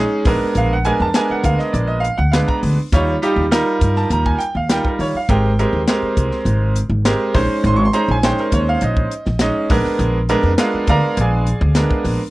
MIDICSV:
0, 0, Header, 1, 5, 480
1, 0, Start_track
1, 0, Tempo, 589971
1, 447, Time_signature, 4, 2, 24, 8
1, 10009, End_track
2, 0, Start_track
2, 0, Title_t, "Grand piano"
2, 0, Program_c, 0, 0
2, 0, Note_on_c, 0, 56, 90
2, 0, Note_on_c, 0, 61, 74
2, 0, Note_on_c, 0, 63, 79
2, 0, Note_on_c, 0, 68, 86
2, 206, Note_off_c, 0, 56, 0
2, 210, Note_off_c, 0, 63, 0
2, 210, Note_off_c, 0, 68, 0
2, 211, Note_off_c, 0, 61, 0
2, 215, Note_on_c, 0, 59, 79
2, 216, Note_on_c, 0, 62, 78
2, 218, Note_on_c, 0, 56, 81
2, 219, Note_on_c, 0, 70, 100
2, 467, Note_on_c, 0, 77, 94
2, 576, Note_off_c, 0, 77, 0
2, 593, Note_on_c, 0, 78, 78
2, 598, Note_off_c, 0, 59, 0
2, 599, Note_off_c, 0, 62, 0
2, 600, Note_off_c, 0, 56, 0
2, 600, Note_off_c, 0, 70, 0
2, 692, Note_on_c, 0, 80, 95
2, 694, Note_on_c, 0, 59, 65
2, 696, Note_on_c, 0, 62, 67
2, 698, Note_off_c, 0, 78, 0
2, 698, Note_on_c, 0, 56, 80
2, 699, Note_on_c, 0, 70, 80
2, 809, Note_off_c, 0, 80, 0
2, 829, Note_on_c, 0, 81, 93
2, 870, Note_off_c, 0, 59, 0
2, 871, Note_off_c, 0, 62, 0
2, 872, Note_off_c, 0, 56, 0
2, 873, Note_off_c, 0, 70, 0
2, 936, Note_off_c, 0, 81, 0
2, 936, Note_on_c, 0, 80, 90
2, 938, Note_on_c, 0, 70, 86
2, 940, Note_on_c, 0, 56, 79
2, 943, Note_on_c, 0, 62, 71
2, 944, Note_on_c, 0, 59, 70
2, 1052, Note_off_c, 0, 80, 0
2, 1066, Note_on_c, 0, 78, 76
2, 1175, Note_off_c, 0, 78, 0
2, 1179, Note_on_c, 0, 77, 87
2, 1290, Note_on_c, 0, 75, 72
2, 1294, Note_off_c, 0, 77, 0
2, 1405, Note_on_c, 0, 74, 68
2, 1407, Note_off_c, 0, 75, 0
2, 1525, Note_on_c, 0, 75, 75
2, 1527, Note_off_c, 0, 74, 0
2, 1629, Note_on_c, 0, 77, 91
2, 1645, Note_off_c, 0, 70, 0
2, 1645, Note_off_c, 0, 75, 0
2, 1646, Note_off_c, 0, 56, 0
2, 1648, Note_off_c, 0, 59, 0
2, 1648, Note_off_c, 0, 62, 0
2, 1759, Note_off_c, 0, 77, 0
2, 1770, Note_on_c, 0, 78, 80
2, 1884, Note_on_c, 0, 77, 77
2, 1889, Note_off_c, 0, 78, 0
2, 1902, Note_on_c, 0, 59, 66
2, 1902, Note_on_c, 0, 71, 75
2, 1903, Note_on_c, 0, 56, 76
2, 1903, Note_on_c, 0, 62, 65
2, 2008, Note_off_c, 0, 77, 0
2, 2017, Note_on_c, 0, 82, 81
2, 2088, Note_off_c, 0, 82, 0
2, 2255, Note_off_c, 0, 56, 0
2, 2255, Note_off_c, 0, 59, 0
2, 2255, Note_off_c, 0, 62, 0
2, 2255, Note_off_c, 0, 71, 0
2, 2386, Note_on_c, 0, 65, 79
2, 2388, Note_on_c, 0, 55, 85
2, 2389, Note_on_c, 0, 73, 97
2, 2390, Note_on_c, 0, 63, 73
2, 2560, Note_off_c, 0, 55, 0
2, 2560, Note_off_c, 0, 65, 0
2, 2561, Note_off_c, 0, 73, 0
2, 2562, Note_off_c, 0, 63, 0
2, 2622, Note_on_c, 0, 55, 87
2, 2626, Note_on_c, 0, 63, 84
2, 2627, Note_on_c, 0, 65, 74
2, 2627, Note_on_c, 0, 67, 101
2, 2798, Note_off_c, 0, 55, 0
2, 2800, Note_off_c, 0, 63, 0
2, 2800, Note_off_c, 0, 65, 0
2, 2800, Note_off_c, 0, 67, 0
2, 2858, Note_on_c, 0, 55, 96
2, 2859, Note_on_c, 0, 63, 85
2, 2859, Note_on_c, 0, 65, 81
2, 2862, Note_on_c, 0, 70, 105
2, 3232, Note_on_c, 0, 81, 84
2, 3342, Note_off_c, 0, 81, 0
2, 3347, Note_on_c, 0, 82, 82
2, 3461, Note_off_c, 0, 82, 0
2, 3469, Note_on_c, 0, 80, 78
2, 3567, Note_off_c, 0, 55, 0
2, 3567, Note_off_c, 0, 63, 0
2, 3567, Note_off_c, 0, 65, 0
2, 3567, Note_on_c, 0, 79, 83
2, 3569, Note_off_c, 0, 70, 0
2, 3580, Note_off_c, 0, 80, 0
2, 3691, Note_off_c, 0, 79, 0
2, 3715, Note_on_c, 0, 77, 71
2, 3823, Note_off_c, 0, 77, 0
2, 3823, Note_on_c, 0, 55, 70
2, 3825, Note_on_c, 0, 63, 61
2, 3827, Note_on_c, 0, 65, 66
2, 3827, Note_on_c, 0, 70, 71
2, 3838, Note_on_c, 0, 79, 89
2, 3947, Note_off_c, 0, 79, 0
2, 3951, Note_off_c, 0, 70, 0
2, 3963, Note_on_c, 0, 70, 58
2, 4068, Note_off_c, 0, 70, 0
2, 4072, Note_on_c, 0, 73, 73
2, 4176, Note_off_c, 0, 55, 0
2, 4178, Note_off_c, 0, 63, 0
2, 4179, Note_off_c, 0, 65, 0
2, 4184, Note_off_c, 0, 73, 0
2, 4203, Note_on_c, 0, 77, 75
2, 4306, Note_on_c, 0, 67, 67
2, 4306, Note_on_c, 0, 70, 81
2, 4308, Note_off_c, 0, 77, 0
2, 4308, Note_on_c, 0, 56, 75
2, 4308, Note_on_c, 0, 60, 65
2, 4316, Note_on_c, 0, 79, 84
2, 4480, Note_off_c, 0, 70, 0
2, 4481, Note_off_c, 0, 67, 0
2, 4482, Note_off_c, 0, 56, 0
2, 4482, Note_off_c, 0, 60, 0
2, 4548, Note_on_c, 0, 67, 69
2, 4550, Note_on_c, 0, 70, 81
2, 4551, Note_on_c, 0, 60, 69
2, 4554, Note_on_c, 0, 56, 76
2, 4722, Note_off_c, 0, 67, 0
2, 4723, Note_off_c, 0, 60, 0
2, 4723, Note_off_c, 0, 70, 0
2, 4724, Note_off_c, 0, 56, 0
2, 4789, Note_on_c, 0, 60, 79
2, 4791, Note_on_c, 0, 56, 75
2, 4794, Note_on_c, 0, 67, 70
2, 4795, Note_on_c, 0, 70, 82
2, 4995, Note_off_c, 0, 79, 0
2, 5491, Note_off_c, 0, 60, 0
2, 5492, Note_off_c, 0, 56, 0
2, 5494, Note_off_c, 0, 67, 0
2, 5494, Note_off_c, 0, 70, 0
2, 5738, Note_on_c, 0, 56, 86
2, 5740, Note_on_c, 0, 60, 74
2, 5740, Note_on_c, 0, 70, 90
2, 5742, Note_on_c, 0, 67, 80
2, 5963, Note_off_c, 0, 56, 0
2, 5974, Note_on_c, 0, 63, 80
2, 5975, Note_on_c, 0, 56, 88
2, 5977, Note_on_c, 0, 72, 100
2, 5979, Note_off_c, 0, 60, 0
2, 5979, Note_off_c, 0, 70, 0
2, 5979, Note_on_c, 0, 61, 76
2, 5980, Note_off_c, 0, 67, 0
2, 6237, Note_on_c, 0, 84, 98
2, 6305, Note_off_c, 0, 84, 0
2, 6316, Note_on_c, 0, 85, 98
2, 6360, Note_off_c, 0, 63, 0
2, 6361, Note_off_c, 0, 56, 0
2, 6362, Note_off_c, 0, 72, 0
2, 6363, Note_off_c, 0, 61, 0
2, 6384, Note_off_c, 0, 85, 0
2, 6387, Note_on_c, 0, 84, 88
2, 6455, Note_on_c, 0, 82, 95
2, 6456, Note_on_c, 0, 61, 66
2, 6459, Note_on_c, 0, 63, 70
2, 6460, Note_off_c, 0, 84, 0
2, 6460, Note_on_c, 0, 72, 87
2, 6461, Note_on_c, 0, 56, 76
2, 6574, Note_off_c, 0, 82, 0
2, 6601, Note_on_c, 0, 80, 87
2, 6634, Note_off_c, 0, 61, 0
2, 6635, Note_off_c, 0, 63, 0
2, 6636, Note_off_c, 0, 56, 0
2, 6636, Note_off_c, 0, 72, 0
2, 6701, Note_on_c, 0, 61, 69
2, 6705, Note_off_c, 0, 80, 0
2, 6705, Note_on_c, 0, 63, 72
2, 6706, Note_on_c, 0, 56, 76
2, 6708, Note_on_c, 0, 72, 91
2, 6712, Note_on_c, 0, 79, 86
2, 6822, Note_off_c, 0, 79, 0
2, 6834, Note_on_c, 0, 70, 65
2, 6941, Note_off_c, 0, 70, 0
2, 6945, Note_on_c, 0, 73, 88
2, 7058, Note_off_c, 0, 73, 0
2, 7070, Note_on_c, 0, 77, 95
2, 7178, Note_off_c, 0, 77, 0
2, 7193, Note_on_c, 0, 75, 69
2, 7404, Note_off_c, 0, 61, 0
2, 7406, Note_off_c, 0, 56, 0
2, 7406, Note_off_c, 0, 63, 0
2, 7407, Note_off_c, 0, 72, 0
2, 7645, Note_off_c, 0, 75, 0
2, 7656, Note_on_c, 0, 61, 69
2, 7657, Note_on_c, 0, 56, 74
2, 7657, Note_on_c, 0, 75, 85
2, 7658, Note_on_c, 0, 63, 67
2, 7884, Note_off_c, 0, 56, 0
2, 7894, Note_off_c, 0, 61, 0
2, 7894, Note_off_c, 0, 63, 0
2, 7894, Note_off_c, 0, 75, 0
2, 7894, Note_on_c, 0, 62, 80
2, 7897, Note_on_c, 0, 56, 88
2, 7899, Note_on_c, 0, 59, 84
2, 7899, Note_on_c, 0, 70, 97
2, 8276, Note_off_c, 0, 62, 0
2, 8278, Note_off_c, 0, 56, 0
2, 8279, Note_off_c, 0, 59, 0
2, 8279, Note_off_c, 0, 70, 0
2, 8374, Note_on_c, 0, 59, 86
2, 8375, Note_on_c, 0, 62, 87
2, 8376, Note_on_c, 0, 56, 86
2, 8378, Note_on_c, 0, 70, 108
2, 8549, Note_off_c, 0, 59, 0
2, 8549, Note_off_c, 0, 62, 0
2, 8550, Note_off_c, 0, 56, 0
2, 8550, Note_off_c, 0, 70, 0
2, 8607, Note_on_c, 0, 70, 90
2, 8610, Note_on_c, 0, 62, 78
2, 8611, Note_on_c, 0, 59, 76
2, 8614, Note_on_c, 0, 56, 92
2, 8623, Note_on_c, 0, 74, 62
2, 8625, Note_on_c, 0, 65, 68
2, 8625, Note_on_c, 0, 71, 64
2, 8626, Note_on_c, 0, 77, 86
2, 8847, Note_off_c, 0, 74, 0
2, 8849, Note_off_c, 0, 65, 0
2, 8849, Note_off_c, 0, 71, 0
2, 8849, Note_off_c, 0, 77, 0
2, 8857, Note_off_c, 0, 70, 0
2, 8862, Note_on_c, 0, 77, 89
2, 8863, Note_on_c, 0, 74, 87
2, 8863, Note_on_c, 0, 82, 109
2, 8870, Note_on_c, 0, 70, 87
2, 9087, Note_off_c, 0, 74, 0
2, 9087, Note_off_c, 0, 77, 0
2, 9087, Note_off_c, 0, 82, 0
2, 9091, Note_off_c, 0, 70, 0
2, 9116, Note_on_c, 0, 74, 56
2, 9118, Note_on_c, 0, 68, 58
2, 9119, Note_on_c, 0, 77, 58
2, 9122, Note_on_c, 0, 80, 66
2, 9313, Note_off_c, 0, 62, 0
2, 9314, Note_off_c, 0, 59, 0
2, 9315, Note_off_c, 0, 56, 0
2, 9566, Note_on_c, 0, 56, 74
2, 9571, Note_on_c, 0, 59, 68
2, 9573, Note_on_c, 0, 62, 73
2, 9574, Note_on_c, 0, 70, 75
2, 9785, Note_off_c, 0, 74, 0
2, 9786, Note_off_c, 0, 68, 0
2, 9787, Note_off_c, 0, 77, 0
2, 9788, Note_off_c, 0, 80, 0
2, 9918, Note_off_c, 0, 56, 0
2, 9921, Note_off_c, 0, 59, 0
2, 9922, Note_off_c, 0, 62, 0
2, 9922, Note_off_c, 0, 70, 0
2, 10009, End_track
3, 0, Start_track
3, 0, Title_t, "Upright bass"
3, 0, Program_c, 1, 32
3, 206, Note_on_c, 1, 34, 74
3, 300, Note_off_c, 1, 34, 0
3, 450, Note_on_c, 1, 34, 89
3, 729, Note_off_c, 1, 34, 0
3, 812, Note_on_c, 1, 41, 82
3, 904, Note_off_c, 1, 41, 0
3, 1169, Note_on_c, 1, 38, 85
3, 1264, Note_off_c, 1, 38, 0
3, 1413, Note_on_c, 1, 34, 91
3, 1692, Note_off_c, 1, 34, 0
3, 1778, Note_on_c, 1, 38, 89
3, 1962, Note_off_c, 1, 38, 0
3, 2138, Note_on_c, 1, 38, 81
3, 2231, Note_off_c, 1, 38, 0
3, 2379, Note_on_c, 1, 39, 102
3, 2563, Note_off_c, 1, 39, 0
3, 2736, Note_on_c, 1, 39, 81
3, 2922, Note_off_c, 1, 39, 0
3, 3102, Note_on_c, 1, 43, 80
3, 3286, Note_off_c, 1, 43, 0
3, 3338, Note_on_c, 1, 39, 90
3, 3523, Note_off_c, 1, 39, 0
3, 3701, Note_on_c, 1, 39, 80
3, 3886, Note_off_c, 1, 39, 0
3, 4060, Note_on_c, 1, 51, 72
3, 4153, Note_off_c, 1, 51, 0
3, 4302, Note_on_c, 1, 32, 94
3, 4579, Note_off_c, 1, 32, 0
3, 4661, Note_on_c, 1, 39, 77
3, 4752, Note_off_c, 1, 39, 0
3, 5020, Note_on_c, 1, 36, 80
3, 5113, Note_off_c, 1, 36, 0
3, 5250, Note_on_c, 1, 32, 86
3, 5531, Note_off_c, 1, 32, 0
3, 5610, Note_on_c, 1, 32, 91
3, 5798, Note_off_c, 1, 32, 0
3, 5975, Note_on_c, 1, 34, 78
3, 6069, Note_off_c, 1, 34, 0
3, 6214, Note_on_c, 1, 32, 102
3, 6400, Note_off_c, 1, 32, 0
3, 6577, Note_on_c, 1, 34, 92
3, 6762, Note_off_c, 1, 34, 0
3, 6933, Note_on_c, 1, 39, 78
3, 7118, Note_off_c, 1, 39, 0
3, 7174, Note_on_c, 1, 34, 99
3, 7358, Note_off_c, 1, 34, 0
3, 7539, Note_on_c, 1, 34, 85
3, 7721, Note_off_c, 1, 34, 0
3, 7891, Note_on_c, 1, 34, 76
3, 7984, Note_off_c, 1, 34, 0
3, 8127, Note_on_c, 1, 34, 96
3, 8405, Note_off_c, 1, 34, 0
3, 8488, Note_on_c, 1, 41, 83
3, 8580, Note_off_c, 1, 41, 0
3, 8847, Note_on_c, 1, 38, 89
3, 8940, Note_off_c, 1, 38, 0
3, 9089, Note_on_c, 1, 34, 98
3, 9364, Note_off_c, 1, 34, 0
3, 9446, Note_on_c, 1, 38, 100
3, 9629, Note_off_c, 1, 38, 0
3, 9800, Note_on_c, 1, 34, 86
3, 9894, Note_off_c, 1, 34, 0
3, 10009, End_track
4, 0, Start_track
4, 0, Title_t, "Muted upright bass strokes"
4, 335, Note_on_c, 9, 29, 35
4, 417, Note_off_c, 9, 29, 0
4, 1059, Note_on_c, 9, 29, 38
4, 1141, Note_off_c, 9, 29, 0
4, 4183, Note_on_c, 9, 29, 35
4, 4265, Note_off_c, 9, 29, 0
4, 4899, Note_on_c, 9, 29, 37
4, 4980, Note_off_c, 9, 29, 0
4, 8018, Note_on_c, 9, 29, 36
4, 8099, Note_off_c, 9, 29, 0
4, 8739, Note_on_c, 9, 29, 38
4, 8820, Note_off_c, 9, 29, 0
4, 10009, End_track
5, 0, Start_track
5, 0, Title_t, "Drums"
5, 203, Note_on_c, 9, 46, 66
5, 207, Note_on_c, 9, 36, 94
5, 284, Note_off_c, 9, 46, 0
5, 288, Note_off_c, 9, 36, 0
5, 447, Note_on_c, 9, 42, 70
5, 528, Note_off_c, 9, 42, 0
5, 688, Note_on_c, 9, 42, 54
5, 770, Note_off_c, 9, 42, 0
5, 929, Note_on_c, 9, 38, 104
5, 929, Note_on_c, 9, 42, 78
5, 1010, Note_off_c, 9, 38, 0
5, 1010, Note_off_c, 9, 42, 0
5, 1169, Note_on_c, 9, 42, 54
5, 1173, Note_on_c, 9, 36, 70
5, 1251, Note_off_c, 9, 42, 0
5, 1254, Note_off_c, 9, 36, 0
5, 1297, Note_on_c, 9, 38, 28
5, 1378, Note_off_c, 9, 38, 0
5, 1414, Note_on_c, 9, 42, 73
5, 1496, Note_off_c, 9, 42, 0
5, 1662, Note_on_c, 9, 42, 52
5, 1744, Note_off_c, 9, 42, 0
5, 1899, Note_on_c, 9, 38, 95
5, 1899, Note_on_c, 9, 42, 72
5, 1981, Note_off_c, 9, 38, 0
5, 1981, Note_off_c, 9, 42, 0
5, 2021, Note_on_c, 9, 36, 68
5, 2103, Note_off_c, 9, 36, 0
5, 2139, Note_on_c, 9, 46, 67
5, 2221, Note_off_c, 9, 46, 0
5, 2380, Note_on_c, 9, 36, 90
5, 2381, Note_on_c, 9, 42, 71
5, 2461, Note_off_c, 9, 36, 0
5, 2462, Note_off_c, 9, 42, 0
5, 2626, Note_on_c, 9, 42, 56
5, 2708, Note_off_c, 9, 42, 0
5, 2865, Note_on_c, 9, 38, 112
5, 2865, Note_on_c, 9, 42, 81
5, 2947, Note_off_c, 9, 38, 0
5, 2947, Note_off_c, 9, 42, 0
5, 3103, Note_on_c, 9, 36, 71
5, 3103, Note_on_c, 9, 42, 60
5, 3184, Note_off_c, 9, 36, 0
5, 3184, Note_off_c, 9, 42, 0
5, 3223, Note_on_c, 9, 38, 31
5, 3304, Note_off_c, 9, 38, 0
5, 3341, Note_on_c, 9, 42, 77
5, 3422, Note_off_c, 9, 42, 0
5, 3464, Note_on_c, 9, 36, 76
5, 3546, Note_off_c, 9, 36, 0
5, 3582, Note_on_c, 9, 42, 59
5, 3664, Note_off_c, 9, 42, 0
5, 3820, Note_on_c, 9, 38, 108
5, 3820, Note_on_c, 9, 42, 79
5, 3901, Note_off_c, 9, 38, 0
5, 3901, Note_off_c, 9, 42, 0
5, 3943, Note_on_c, 9, 36, 71
5, 4024, Note_off_c, 9, 36, 0
5, 4066, Note_on_c, 9, 46, 64
5, 4147, Note_off_c, 9, 46, 0
5, 4302, Note_on_c, 9, 36, 89
5, 4306, Note_on_c, 9, 42, 75
5, 4384, Note_off_c, 9, 36, 0
5, 4388, Note_off_c, 9, 42, 0
5, 4550, Note_on_c, 9, 42, 59
5, 4632, Note_off_c, 9, 42, 0
5, 4780, Note_on_c, 9, 38, 109
5, 4780, Note_on_c, 9, 42, 77
5, 4862, Note_off_c, 9, 38, 0
5, 4862, Note_off_c, 9, 42, 0
5, 5020, Note_on_c, 9, 36, 72
5, 5022, Note_on_c, 9, 42, 59
5, 5101, Note_off_c, 9, 36, 0
5, 5103, Note_off_c, 9, 42, 0
5, 5139, Note_on_c, 9, 38, 28
5, 5220, Note_off_c, 9, 38, 0
5, 5257, Note_on_c, 9, 42, 75
5, 5338, Note_off_c, 9, 42, 0
5, 5497, Note_on_c, 9, 42, 61
5, 5578, Note_off_c, 9, 42, 0
5, 5737, Note_on_c, 9, 38, 105
5, 5737, Note_on_c, 9, 42, 76
5, 5819, Note_off_c, 9, 38, 0
5, 5819, Note_off_c, 9, 42, 0
5, 5977, Note_on_c, 9, 36, 93
5, 5977, Note_on_c, 9, 46, 73
5, 6058, Note_off_c, 9, 36, 0
5, 6058, Note_off_c, 9, 46, 0
5, 6221, Note_on_c, 9, 42, 73
5, 6302, Note_off_c, 9, 42, 0
5, 6454, Note_on_c, 9, 42, 54
5, 6535, Note_off_c, 9, 42, 0
5, 6698, Note_on_c, 9, 38, 110
5, 6698, Note_on_c, 9, 42, 77
5, 6780, Note_off_c, 9, 38, 0
5, 6780, Note_off_c, 9, 42, 0
5, 6813, Note_on_c, 9, 38, 31
5, 6894, Note_off_c, 9, 38, 0
5, 6931, Note_on_c, 9, 42, 64
5, 6933, Note_on_c, 9, 36, 76
5, 7013, Note_off_c, 9, 42, 0
5, 7015, Note_off_c, 9, 36, 0
5, 7168, Note_on_c, 9, 42, 81
5, 7250, Note_off_c, 9, 42, 0
5, 7295, Note_on_c, 9, 36, 79
5, 7377, Note_off_c, 9, 36, 0
5, 7416, Note_on_c, 9, 42, 68
5, 7497, Note_off_c, 9, 42, 0
5, 7531, Note_on_c, 9, 38, 31
5, 7612, Note_off_c, 9, 38, 0
5, 7641, Note_on_c, 9, 38, 110
5, 7641, Note_on_c, 9, 42, 77
5, 7723, Note_off_c, 9, 38, 0
5, 7723, Note_off_c, 9, 42, 0
5, 7891, Note_on_c, 9, 36, 91
5, 7892, Note_on_c, 9, 46, 74
5, 7973, Note_off_c, 9, 36, 0
5, 7973, Note_off_c, 9, 46, 0
5, 8010, Note_on_c, 9, 38, 33
5, 8091, Note_off_c, 9, 38, 0
5, 8132, Note_on_c, 9, 42, 78
5, 8213, Note_off_c, 9, 42, 0
5, 8370, Note_on_c, 9, 42, 62
5, 8452, Note_off_c, 9, 42, 0
5, 8607, Note_on_c, 9, 38, 115
5, 8607, Note_on_c, 9, 42, 85
5, 8689, Note_off_c, 9, 38, 0
5, 8689, Note_off_c, 9, 42, 0
5, 8846, Note_on_c, 9, 42, 62
5, 8849, Note_on_c, 9, 36, 77
5, 8927, Note_off_c, 9, 42, 0
5, 8930, Note_off_c, 9, 36, 0
5, 9088, Note_on_c, 9, 42, 79
5, 9169, Note_off_c, 9, 42, 0
5, 9329, Note_on_c, 9, 42, 63
5, 9410, Note_off_c, 9, 42, 0
5, 9559, Note_on_c, 9, 38, 107
5, 9559, Note_on_c, 9, 42, 76
5, 9641, Note_off_c, 9, 38, 0
5, 9641, Note_off_c, 9, 42, 0
5, 9686, Note_on_c, 9, 36, 82
5, 9767, Note_off_c, 9, 36, 0
5, 9804, Note_on_c, 9, 46, 74
5, 9885, Note_off_c, 9, 46, 0
5, 10009, End_track
0, 0, End_of_file